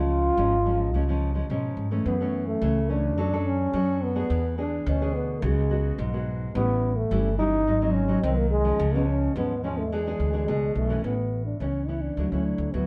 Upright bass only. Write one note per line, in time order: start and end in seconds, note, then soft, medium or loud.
0.00 0.29 C#2 medium
0.37 0.94 G#1 medium
0.94 1.41 C#2 loud
1.50 1.75 B2 medium
1.77 2.02 G#2 medium
2.06 2.53 F#2 medium
2.61 3.17 C#2 medium
3.17 3.65 F#2 medium
3.73 4.21 F#2 medium
4.30 4.78 E2 medium
4.86 5.44 D2 loud
5.42 5.90 C#2 loud
5.99 6.46 B1 medium
6.55 7.03 A1 loud
7.11 7.67 G1 loud
7.67 8.15 G#1 loud
8.23 8.71 C2 loud
8.79 9.27 C#2 loud
9.36 9.92 D#2 medium
9.92 10.16 E2 loud
10.20 10.45 D2 medium
10.48 10.73 C#2 medium
10.75 11.01 B1 medium
11.04 11.52 A1 medium
11.60 12.08 C#2 medium
12.17 12.29 D2 medium
12.32 12.55 D2 medium
12.58 12.71 D2 medium
12.74 12.87 D2 medium